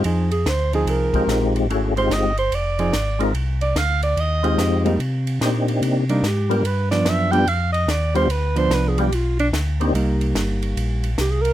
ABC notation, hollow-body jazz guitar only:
X:1
M:4/4
L:1/8
Q:"Swing" 1/4=146
K:Cm
V:1 name="Hollow-body jazz guitar"
[F,CEA] z2 [F,CEA]3 z2 | z4 z [F,CEA] z2 | z6 z [G,B,E] | z4 z [G,B,E] z2 |
z [F,=B,D]2 [F,B,D] z4 | z [F,=B,D]3 z4 | [G,B,E]4- [G,B,E] z3 |]